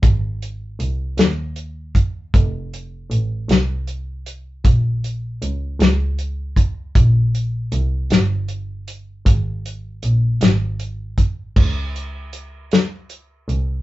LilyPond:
<<
  \new Staff \with { instrumentName = "Double bass" } { \clef bass \time 6/8 \key aes \mixolydian \tempo 4. = 52 aes,,4 c,8 ees,4. | f,,4 a,,8 c,4. | bes,,4 des,8 des,4. | bes,,4 c,8 g,,4. |
aes,,4 bes,,8 aes,,4. | des,2~ des,8 c,8 | }
  \new DrumStaff \with { instrumentName = "Drums" } \drummode { \time 6/8 <hh bd>8 hh8 hh8 <hh sn>8 hh8 <hh bd>8 | <hh bd>8 hh8 hh8 <hh sn>8 hh8 hh8 | <hh bd>8 hh8 hh8 <hh sn>8 hh8 <hh bd>8 | <hh bd>8 hh8 hh8 <hh sn>8 hh8 hh8 |
<hh bd>8 hh8 hh8 <hh sn>8 hh8 <hh bd>8 | <cymc bd>8 hh8 hh8 <hh sn>8 hh8 hh8 | }
>>